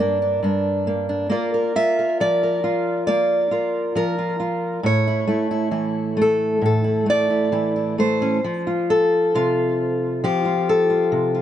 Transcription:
steel-string acoustic guitar
Already playing: G2 D5
0.00 A#3 D4
0.22 D4
0.43 G2 D4
0.87 A#3
1.09 D4
1.29 A#3 F4 A#4 D5
1.54 A#4
1.76 F4 E5
1.99 A#4
2.20 F3 D5
2.43 A#4
2.64 F4
3.07 A#3 D5
3.51 F4 A#4
3.95 F3 A#4
4.18 F4
4.40 F4
4.83 A2 C#5
5.07 E4
5.27 A3 E4
5.51 E4
5.71 E3 E4
6.17 A3
6.22 A4
6.61 A2
6.66 A4
6.84 E4
7.06 A3 D5
7.30 E4
7.52 E3 E4
7.76 E4
7.98 A3 C5
8.22 C#4
8.44 F3
8.67 F4
8.90 A4
9.35 C3 F4
10.24 F3 G4
10.45 F4
10.69 A4
10.90 F4
11.12 C3
11.35 F4

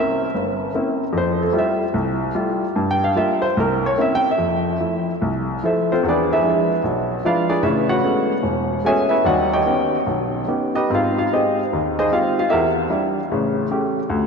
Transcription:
grand piano
Already playing: A#3 C4 C#4 E4 E5
0.34 G1
0.74 A#3 C4 C#4 E4
1.13 F2
1.18 C5
1.41 A4
1.53 G3 A3 E4 F4
1.58 E5
1.94 C2
2.35 G3 A3 E4 F4
2.76 G2
2.91 G5
3.04 F5
3.15 G3 A#3 F4 E5
3.42 C5
3.57 C2 A#4
3.86 C#5
3.97 A#3 C4 C#4 E4 E5
4.15 G5
4.31 E5
4.38 F2
4.80 F3 A3 E4
5.22 C2
5.63 F3 A3 E4 A4 C5 E5
5.92 C4 F4 A4 C5
6.03 E2
6.08 D4 G#4 B4 D5
6.33 E4 G#4 B4 E5
6.42 F3 G#3 D4 E4
6.83 B1
7.24 F3 G#3 D4 E4 F4 B4 D5 F5
7.49 D4 G#4 B4 D5
7.62 A1 C#3 E4 B4 C#5 E5
7.89 F#4 B4 C#5 F#5
8.03 G#3 A3 B3 C#4 F#4
8.43 E1
8.84 G#3 A3 B3 C#4 F#4 G#4 C#5 E5 G#5
9.09 E4 B4 C#5 E5
9.24 D#2 G3 F#4 C#5 D#5 F#5
9.53 G4 C#5 D#5 G5
9.66 B3 C#4 D#4 G4
10.06 B1 D#3
10.47 B3 C#4 D#4 G4
10.75 D#4 G4 B4 D#5
10.90 G#2 C4 F4
10.95 F5
11.18 F4 F5
11.32 G#3 C4 D#4 G4 G#4 C5 D#5
11.73 D#2
11.99 D#4 G#4 C5 D#5
12.11 G#3 C4 F4 G4 F5
12.39 F4 F5
12.50 E2 E4 G4 A#4 E5
12.90 G3 D4 E4
13.32 A1 C#3
13.71 A3 C#4 G4
14.10 D2

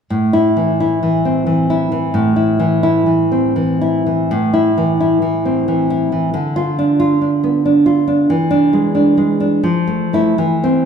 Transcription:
nylon-string guitar
0.10 A2
0.33 E4
0.57 E3
0.80 E4
1.03 E3
1.25 C4
1.46 E3
1.70 E4
1.92 E3
2.14 A2
2.36 E4
2.60 E3
2.83 E4
3.06 E3
3.32 C4
3.56 E3
3.81 E4
4.07 E3
4.31 A2
4.54 E4
4.77 E3
5.01 E4
5.22 E3
5.45 C4
5.68 E3
5.90 E4
6.12 E3
6.34 D3
6.56 F4
6.79 D4
7.00 F4
7.21 D4
7.44 B3
7.66 D4
7.86 F4
8.08 D4
8.30 E3
8.51 D4
8.73 G#3
8.95 D4
9.17 G#3
9.40 D4
9.63 F3
9.87 A3
10.13 A3 E4
10.38 E3
10.64 C4

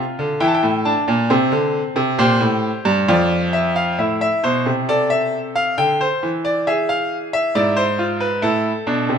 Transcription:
grand piano
Already playing: F4 F5
0.19 D3
0.40 E3 E4 G5
0.48 A5
0.54 G5
0.63 A2
0.85 D4 A5
1.08 A#2
1.30 C3 C4
1.52 D3
1.96 C3
2.19 A#2 G4 C5
2.41 A2
2.85 G2
3.08 F2 F4 D5
3.53 E5
3.76 F5
3.98 A2 E4 E5
4.21 E5
4.44 B2 C5
4.66 C3
4.89 A4 D5
5.10 E5
5.56 F5
5.78 D3 G5
6.01 C5
6.23 E3
6.45 D5
6.67 G#4 E5
6.89 F5
7.33 E5
7.55 G#2 E4 D5
7.77 C5
7.99 F4
8.20 B4
8.42 A2 E4 A4
8.87 B2 D4
9.09 C3

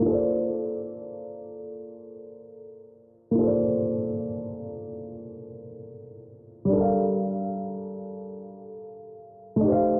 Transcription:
upright piano
0.00 A#3 F4
0.06 A4 C5
0.14 D5
3.31 A#3 F4
3.39 A4
3.43 C5 D5
6.65 G3
6.69 D4 A4
6.77 A#4
6.81 F5
9.56 A3
9.61 D#4 G4
9.68 C5
9.72 F5

